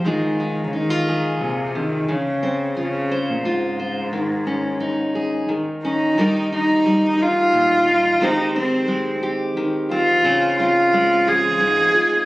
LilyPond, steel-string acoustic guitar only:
\new Staff \with { instrumentName = "Steel-string acoustic guitar" } { \time 3/4 \key ees \mixolydian \tempo 4 = 88 << { <aes ees' f' aes'>8 ees'8 ees'16 f'16 aes'4.~ | aes'8 c'8 f'8 c''8 f'8 c''8 | r8 des'8 ees'8 aes'8 r8 des'8 | <g ees' g' bes'>8 ees'4 ees'4 ees'8 |
<aes c' g' c''>8 c'4 g'4 c'8 | c'8 c'4 f'4 f'8 | } \\ { aes,2 bes,8 c8 | des2. | ees2 ees4 | ees4 g4 bes,4 |
ees4 aes4 ees4 | des4 aes4 aes,4 | } >> }